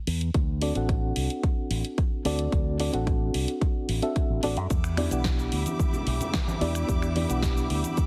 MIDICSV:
0, 0, Header, 1, 5, 480
1, 0, Start_track
1, 0, Tempo, 545455
1, 303, Time_signature, 4, 2, 24, 8
1, 7098, End_track
2, 0, Start_track
2, 0, Title_t, "String section"
2, 0, Program_c, 0, 48
2, 4135, Note_on_c, 0, 67, 76
2, 4135, Note_on_c, 0, 76, 66
2, 4135, Note_on_c, 0, 86, 83
2, 4137, Note_on_c, 0, 83, 66
2, 7098, Note_off_c, 0, 67, 0
2, 7098, Note_off_c, 0, 76, 0
2, 7098, Note_off_c, 0, 83, 0
2, 7098, Note_off_c, 0, 86, 0
2, 7098, End_track
3, 0, Start_track
3, 0, Title_t, "Reed electric piano"
3, 0, Program_c, 1, 4
3, 540, Note_on_c, 1, 60, 71
3, 543, Note_on_c, 1, 62, 62
3, 543, Note_on_c, 1, 66, 61
3, 547, Note_on_c, 1, 69, 62
3, 549, Note_on_c, 1, 74, 76
3, 634, Note_off_c, 1, 60, 0
3, 635, Note_off_c, 1, 62, 0
3, 635, Note_off_c, 1, 66, 0
3, 638, Note_off_c, 1, 69, 0
3, 638, Note_off_c, 1, 74, 0
3, 660, Note_on_c, 1, 60, 72
3, 664, Note_on_c, 1, 62, 67
3, 671, Note_on_c, 1, 66, 65
3, 675, Note_on_c, 1, 69, 67
3, 679, Note_on_c, 1, 78, 78
3, 1952, Note_off_c, 1, 60, 0
3, 1954, Note_off_c, 1, 62, 0
3, 1957, Note_off_c, 1, 66, 0
3, 1959, Note_off_c, 1, 69, 0
3, 1961, Note_off_c, 1, 78, 0
3, 1981, Note_on_c, 1, 60, 83
3, 1984, Note_on_c, 1, 62, 77
3, 1986, Note_on_c, 1, 66, 80
3, 1987, Note_on_c, 1, 69, 78
3, 1990, Note_on_c, 1, 74, 96
3, 2433, Note_off_c, 1, 60, 0
3, 2435, Note_off_c, 1, 62, 0
3, 2436, Note_off_c, 1, 66, 0
3, 2436, Note_off_c, 1, 69, 0
3, 2438, Note_off_c, 1, 74, 0
3, 2458, Note_on_c, 1, 60, 68
3, 2460, Note_on_c, 1, 62, 62
3, 2463, Note_on_c, 1, 66, 64
3, 2465, Note_on_c, 1, 69, 62
3, 2468, Note_on_c, 1, 74, 77
3, 2553, Note_off_c, 1, 60, 0
3, 2554, Note_off_c, 1, 62, 0
3, 2555, Note_off_c, 1, 66, 0
3, 2556, Note_off_c, 1, 69, 0
3, 2558, Note_off_c, 1, 74, 0
3, 2573, Note_on_c, 1, 60, 74
3, 2578, Note_on_c, 1, 62, 66
3, 2582, Note_on_c, 1, 66, 68
3, 2586, Note_on_c, 1, 69, 67
3, 2591, Note_on_c, 1, 78, 77
3, 3515, Note_off_c, 1, 60, 0
3, 3517, Note_off_c, 1, 62, 0
3, 3519, Note_off_c, 1, 66, 0
3, 3521, Note_off_c, 1, 69, 0
3, 3523, Note_off_c, 1, 78, 0
3, 3538, Note_on_c, 1, 60, 75
3, 3540, Note_on_c, 1, 62, 72
3, 3542, Note_on_c, 1, 66, 71
3, 3545, Note_on_c, 1, 69, 75
3, 3546, Note_on_c, 1, 76, 83
3, 3871, Note_off_c, 1, 60, 0
3, 3872, Note_off_c, 1, 62, 0
3, 3873, Note_off_c, 1, 66, 0
3, 3875, Note_off_c, 1, 69, 0
3, 3875, Note_off_c, 1, 76, 0
3, 3898, Note_on_c, 1, 60, 83
3, 3900, Note_on_c, 1, 62, 78
3, 3902, Note_on_c, 1, 66, 83
3, 3903, Note_on_c, 1, 69, 83
3, 3907, Note_on_c, 1, 74, 97
3, 4009, Note_off_c, 1, 60, 0
3, 4010, Note_off_c, 1, 62, 0
3, 4011, Note_off_c, 1, 66, 0
3, 4011, Note_off_c, 1, 69, 0
3, 4013, Note_off_c, 1, 74, 0
3, 4375, Note_on_c, 1, 59, 69
3, 4379, Note_on_c, 1, 62, 66
3, 4380, Note_on_c, 1, 64, 60
3, 4384, Note_on_c, 1, 67, 66
3, 4384, Note_on_c, 1, 74, 76
3, 4472, Note_off_c, 1, 59, 0
3, 4474, Note_off_c, 1, 62, 0
3, 4474, Note_off_c, 1, 64, 0
3, 4476, Note_off_c, 1, 67, 0
3, 4476, Note_off_c, 1, 74, 0
3, 4495, Note_on_c, 1, 59, 75
3, 4498, Note_on_c, 1, 62, 62
3, 4503, Note_on_c, 1, 64, 64
3, 4508, Note_on_c, 1, 67, 66
3, 4512, Note_on_c, 1, 78, 78
3, 5789, Note_off_c, 1, 59, 0
3, 5791, Note_off_c, 1, 62, 0
3, 5794, Note_off_c, 1, 64, 0
3, 5796, Note_off_c, 1, 67, 0
3, 5798, Note_off_c, 1, 78, 0
3, 5815, Note_on_c, 1, 59, 87
3, 5818, Note_on_c, 1, 62, 81
3, 5818, Note_on_c, 1, 64, 81
3, 5821, Note_on_c, 1, 67, 81
3, 5824, Note_on_c, 1, 74, 96
3, 6270, Note_off_c, 1, 59, 0
3, 6272, Note_off_c, 1, 62, 0
3, 6272, Note_off_c, 1, 64, 0
3, 6273, Note_off_c, 1, 67, 0
3, 6275, Note_off_c, 1, 74, 0
3, 6297, Note_on_c, 1, 59, 71
3, 6299, Note_on_c, 1, 62, 63
3, 6301, Note_on_c, 1, 64, 68
3, 6303, Note_on_c, 1, 67, 63
3, 6306, Note_on_c, 1, 74, 78
3, 6392, Note_off_c, 1, 59, 0
3, 6393, Note_off_c, 1, 62, 0
3, 6395, Note_off_c, 1, 64, 0
3, 6395, Note_off_c, 1, 67, 0
3, 6397, Note_off_c, 1, 74, 0
3, 6411, Note_on_c, 1, 59, 73
3, 6415, Note_on_c, 1, 62, 67
3, 6420, Note_on_c, 1, 64, 70
3, 6425, Note_on_c, 1, 67, 70
3, 6429, Note_on_c, 1, 78, 78
3, 7098, Note_off_c, 1, 59, 0
3, 7098, Note_off_c, 1, 62, 0
3, 7098, Note_off_c, 1, 64, 0
3, 7098, Note_off_c, 1, 67, 0
3, 7098, Note_off_c, 1, 78, 0
3, 7098, End_track
4, 0, Start_track
4, 0, Title_t, "Fingered electric bass"
4, 0, Program_c, 2, 33
4, 64, Note_on_c, 2, 40, 88
4, 251, Note_off_c, 2, 40, 0
4, 305, Note_on_c, 2, 38, 87
4, 623, Note_off_c, 2, 38, 0
4, 663, Note_on_c, 2, 33, 72
4, 980, Note_off_c, 2, 33, 0
4, 1024, Note_on_c, 2, 36, 77
4, 1118, Note_off_c, 2, 36, 0
4, 1500, Note_on_c, 2, 33, 89
4, 1596, Note_off_c, 2, 33, 0
4, 1982, Note_on_c, 2, 38, 83
4, 2170, Note_off_c, 2, 38, 0
4, 2221, Note_on_c, 2, 38, 91
4, 2541, Note_off_c, 2, 38, 0
4, 2584, Note_on_c, 2, 33, 76
4, 2901, Note_off_c, 2, 33, 0
4, 2942, Note_on_c, 2, 36, 72
4, 3037, Note_off_c, 2, 36, 0
4, 3422, Note_on_c, 2, 33, 91
4, 3517, Note_off_c, 2, 33, 0
4, 3784, Note_on_c, 2, 33, 77
4, 3876, Note_off_c, 2, 33, 0
4, 3903, Note_on_c, 2, 33, 76
4, 4022, Note_off_c, 2, 33, 0
4, 4022, Note_on_c, 2, 42, 85
4, 4116, Note_off_c, 2, 42, 0
4, 4140, Note_on_c, 2, 40, 88
4, 4460, Note_off_c, 2, 40, 0
4, 4499, Note_on_c, 2, 35, 75
4, 4818, Note_off_c, 2, 35, 0
4, 4858, Note_on_c, 2, 38, 71
4, 4955, Note_off_c, 2, 38, 0
4, 5341, Note_on_c, 2, 35, 92
4, 5437, Note_off_c, 2, 35, 0
4, 5819, Note_on_c, 2, 40, 90
4, 6009, Note_off_c, 2, 40, 0
4, 6060, Note_on_c, 2, 40, 90
4, 6380, Note_off_c, 2, 40, 0
4, 6420, Note_on_c, 2, 35, 78
4, 6739, Note_off_c, 2, 35, 0
4, 6778, Note_on_c, 2, 38, 79
4, 6875, Note_off_c, 2, 38, 0
4, 7098, End_track
5, 0, Start_track
5, 0, Title_t, "Drums"
5, 64, Note_on_c, 9, 46, 102
5, 152, Note_off_c, 9, 46, 0
5, 186, Note_on_c, 9, 42, 62
5, 274, Note_off_c, 9, 42, 0
5, 302, Note_on_c, 9, 42, 47
5, 304, Note_on_c, 9, 36, 113
5, 390, Note_off_c, 9, 42, 0
5, 392, Note_off_c, 9, 36, 0
5, 541, Note_on_c, 9, 46, 102
5, 629, Note_off_c, 9, 46, 0
5, 663, Note_on_c, 9, 42, 57
5, 751, Note_off_c, 9, 42, 0
5, 783, Note_on_c, 9, 36, 105
5, 783, Note_on_c, 9, 42, 47
5, 871, Note_off_c, 9, 36, 0
5, 871, Note_off_c, 9, 42, 0
5, 1021, Note_on_c, 9, 46, 110
5, 1109, Note_off_c, 9, 46, 0
5, 1146, Note_on_c, 9, 42, 63
5, 1234, Note_off_c, 9, 42, 0
5, 1263, Note_on_c, 9, 36, 116
5, 1263, Note_on_c, 9, 42, 46
5, 1351, Note_off_c, 9, 36, 0
5, 1351, Note_off_c, 9, 42, 0
5, 1502, Note_on_c, 9, 46, 101
5, 1590, Note_off_c, 9, 46, 0
5, 1624, Note_on_c, 9, 42, 57
5, 1712, Note_off_c, 9, 42, 0
5, 1742, Note_on_c, 9, 36, 104
5, 1742, Note_on_c, 9, 42, 48
5, 1830, Note_off_c, 9, 36, 0
5, 1830, Note_off_c, 9, 42, 0
5, 1981, Note_on_c, 9, 46, 101
5, 2069, Note_off_c, 9, 46, 0
5, 2101, Note_on_c, 9, 42, 58
5, 2189, Note_off_c, 9, 42, 0
5, 2221, Note_on_c, 9, 36, 117
5, 2221, Note_on_c, 9, 42, 46
5, 2309, Note_off_c, 9, 36, 0
5, 2309, Note_off_c, 9, 42, 0
5, 2460, Note_on_c, 9, 46, 101
5, 2548, Note_off_c, 9, 46, 0
5, 2583, Note_on_c, 9, 42, 58
5, 2671, Note_off_c, 9, 42, 0
5, 2702, Note_on_c, 9, 36, 105
5, 2702, Note_on_c, 9, 42, 47
5, 2790, Note_off_c, 9, 36, 0
5, 2790, Note_off_c, 9, 42, 0
5, 2942, Note_on_c, 9, 46, 105
5, 3030, Note_off_c, 9, 46, 0
5, 3063, Note_on_c, 9, 42, 59
5, 3151, Note_off_c, 9, 42, 0
5, 3181, Note_on_c, 9, 36, 112
5, 3183, Note_on_c, 9, 42, 45
5, 3269, Note_off_c, 9, 36, 0
5, 3271, Note_off_c, 9, 42, 0
5, 3421, Note_on_c, 9, 46, 99
5, 3509, Note_off_c, 9, 46, 0
5, 3541, Note_on_c, 9, 42, 57
5, 3629, Note_off_c, 9, 42, 0
5, 3659, Note_on_c, 9, 42, 48
5, 3660, Note_on_c, 9, 36, 99
5, 3747, Note_off_c, 9, 42, 0
5, 3748, Note_off_c, 9, 36, 0
5, 3897, Note_on_c, 9, 46, 103
5, 3985, Note_off_c, 9, 46, 0
5, 4019, Note_on_c, 9, 42, 59
5, 4107, Note_off_c, 9, 42, 0
5, 4137, Note_on_c, 9, 42, 47
5, 4140, Note_on_c, 9, 36, 114
5, 4141, Note_on_c, 9, 82, 53
5, 4225, Note_off_c, 9, 42, 0
5, 4228, Note_off_c, 9, 36, 0
5, 4229, Note_off_c, 9, 82, 0
5, 4260, Note_on_c, 9, 26, 62
5, 4263, Note_on_c, 9, 82, 30
5, 4348, Note_off_c, 9, 26, 0
5, 4351, Note_off_c, 9, 82, 0
5, 4377, Note_on_c, 9, 26, 59
5, 4377, Note_on_c, 9, 46, 100
5, 4379, Note_on_c, 9, 63, 82
5, 4465, Note_off_c, 9, 26, 0
5, 4465, Note_off_c, 9, 46, 0
5, 4467, Note_off_c, 9, 63, 0
5, 4499, Note_on_c, 9, 42, 59
5, 4503, Note_on_c, 9, 82, 61
5, 4587, Note_off_c, 9, 42, 0
5, 4591, Note_off_c, 9, 82, 0
5, 4613, Note_on_c, 9, 38, 103
5, 4618, Note_on_c, 9, 42, 48
5, 4620, Note_on_c, 9, 36, 102
5, 4622, Note_on_c, 9, 82, 48
5, 4701, Note_off_c, 9, 38, 0
5, 4706, Note_off_c, 9, 42, 0
5, 4708, Note_off_c, 9, 36, 0
5, 4710, Note_off_c, 9, 82, 0
5, 4744, Note_on_c, 9, 82, 31
5, 4832, Note_off_c, 9, 82, 0
5, 4857, Note_on_c, 9, 46, 101
5, 4945, Note_off_c, 9, 46, 0
5, 4980, Note_on_c, 9, 42, 60
5, 4981, Note_on_c, 9, 63, 60
5, 4984, Note_on_c, 9, 82, 62
5, 5068, Note_off_c, 9, 42, 0
5, 5069, Note_off_c, 9, 63, 0
5, 5072, Note_off_c, 9, 82, 0
5, 5100, Note_on_c, 9, 36, 109
5, 5100, Note_on_c, 9, 42, 46
5, 5104, Note_on_c, 9, 82, 53
5, 5188, Note_off_c, 9, 36, 0
5, 5188, Note_off_c, 9, 42, 0
5, 5192, Note_off_c, 9, 82, 0
5, 5217, Note_on_c, 9, 64, 74
5, 5224, Note_on_c, 9, 82, 33
5, 5305, Note_off_c, 9, 64, 0
5, 5312, Note_off_c, 9, 82, 0
5, 5339, Note_on_c, 9, 46, 98
5, 5427, Note_off_c, 9, 46, 0
5, 5458, Note_on_c, 9, 64, 78
5, 5462, Note_on_c, 9, 42, 59
5, 5466, Note_on_c, 9, 82, 64
5, 5546, Note_off_c, 9, 64, 0
5, 5550, Note_off_c, 9, 42, 0
5, 5554, Note_off_c, 9, 82, 0
5, 5575, Note_on_c, 9, 38, 106
5, 5580, Note_on_c, 9, 36, 100
5, 5580, Note_on_c, 9, 42, 48
5, 5584, Note_on_c, 9, 82, 54
5, 5663, Note_off_c, 9, 38, 0
5, 5668, Note_off_c, 9, 36, 0
5, 5668, Note_off_c, 9, 42, 0
5, 5672, Note_off_c, 9, 82, 0
5, 5701, Note_on_c, 9, 63, 95
5, 5707, Note_on_c, 9, 82, 31
5, 5789, Note_off_c, 9, 63, 0
5, 5795, Note_off_c, 9, 82, 0
5, 5815, Note_on_c, 9, 64, 69
5, 5820, Note_on_c, 9, 46, 97
5, 5903, Note_off_c, 9, 64, 0
5, 5908, Note_off_c, 9, 46, 0
5, 5941, Note_on_c, 9, 26, 64
5, 5941, Note_on_c, 9, 42, 59
5, 5945, Note_on_c, 9, 82, 64
5, 6029, Note_off_c, 9, 26, 0
5, 6029, Note_off_c, 9, 42, 0
5, 6033, Note_off_c, 9, 82, 0
5, 6059, Note_on_c, 9, 42, 49
5, 6060, Note_on_c, 9, 36, 107
5, 6063, Note_on_c, 9, 82, 56
5, 6147, Note_off_c, 9, 42, 0
5, 6148, Note_off_c, 9, 36, 0
5, 6151, Note_off_c, 9, 82, 0
5, 6182, Note_on_c, 9, 26, 60
5, 6185, Note_on_c, 9, 82, 31
5, 6270, Note_off_c, 9, 26, 0
5, 6273, Note_off_c, 9, 82, 0
5, 6299, Note_on_c, 9, 46, 97
5, 6301, Note_on_c, 9, 63, 76
5, 6387, Note_off_c, 9, 46, 0
5, 6389, Note_off_c, 9, 63, 0
5, 6421, Note_on_c, 9, 42, 61
5, 6424, Note_on_c, 9, 82, 68
5, 6509, Note_off_c, 9, 42, 0
5, 6512, Note_off_c, 9, 82, 0
5, 6534, Note_on_c, 9, 38, 98
5, 6539, Note_on_c, 9, 36, 98
5, 6539, Note_on_c, 9, 42, 47
5, 6543, Note_on_c, 9, 82, 57
5, 6622, Note_off_c, 9, 38, 0
5, 6627, Note_off_c, 9, 36, 0
5, 6627, Note_off_c, 9, 42, 0
5, 6631, Note_off_c, 9, 82, 0
5, 6663, Note_on_c, 9, 82, 31
5, 6751, Note_off_c, 9, 82, 0
5, 6777, Note_on_c, 9, 46, 101
5, 6865, Note_off_c, 9, 46, 0
5, 6900, Note_on_c, 9, 42, 59
5, 6903, Note_on_c, 9, 82, 70
5, 6905, Note_on_c, 9, 63, 56
5, 6988, Note_off_c, 9, 42, 0
5, 6991, Note_off_c, 9, 82, 0
5, 6993, Note_off_c, 9, 63, 0
5, 7015, Note_on_c, 9, 42, 45
5, 7018, Note_on_c, 9, 82, 55
5, 7019, Note_on_c, 9, 36, 104
5, 7098, Note_off_c, 9, 36, 0
5, 7098, Note_off_c, 9, 42, 0
5, 7098, Note_off_c, 9, 82, 0
5, 7098, End_track
0, 0, End_of_file